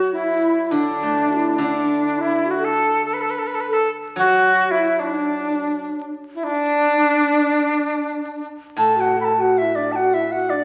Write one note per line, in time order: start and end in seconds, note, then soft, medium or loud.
0.00 1.30 F#3 medium
0.00 0.10 F#4 medium
0.00 0.14 F#4 medium
0.13 0.73 E4 medium
0.13 0.61 E4 medium
0.61 0.72 E4 medium
0.71 1.57 D3 medium
0.71 1.60 D4 medium
0.71 1.32 D4 medium
1.03 2.19 A3 soft
1.31 1.36 F#4 medium
1.35 1.62 E4 medium
1.58 3.32 D3 medium
1.58 2.19 D4 medium
1.63 2.22 D4 medium
2.18 2.47 E4 medium
2.18 2.52 E4 loud
2.45 2.58 F#4 medium
2.51 2.66 F#4 medium
2.59 3.00 A4 medium
2.64 3.05 A4 medium
3.05 3.15 A4 medium
3.13 3.23 B4 medium
3.21 3.32 A4 medium
3.30 3.40 B4 medium
3.39 3.48 A4 medium
3.47 3.56 B4 medium
3.54 3.62 A4 medium
3.61 3.69 B4 medium
3.68 3.88 A4 medium
3.68 3.74 B4 medium
3.73 3.90 A4 medium
4.16 5.86 F#3 medium
4.16 4.74 F#4 medium
4.16 4.73 F#4 loud
4.71 5.01 E4 loud
4.71 5.04 E4 medium
4.99 6.14 D4 medium
4.99 6.16 D4 medium
6.35 6.45 E4 medium
6.44 8.47 D4 loud
6.44 6.50 E4 medium
6.49 8.44 D4 loud
8.77 10.51 A2 medium
8.77 8.98 A4 medium
8.77 9.02 A5 loud
8.96 9.18 F#4 medium
9.00 9.18 F#5 medium
9.17 9.36 A4 medium
9.17 9.25 B5 medium
9.24 9.42 A5 medium
9.37 9.58 F#4 medium
9.37 9.60 F#5 medium
9.58 9.63 F#4 medium
9.58 9.77 E5 medium
9.62 9.79 E4 medium
9.75 9.96 D4 medium
9.75 9.93 D5 medium
9.92 10.16 F#4 medium
9.92 10.15 F#5 medium
9.92 9.97 A5 medium
10.14 10.33 E4 medium
10.14 10.33 E5 medium
10.31 10.50 F#4 medium
10.31 10.51 F#5 medium
10.49 10.64 D4 medium
10.49 10.53 E4 soft
10.49 10.64 D5 medium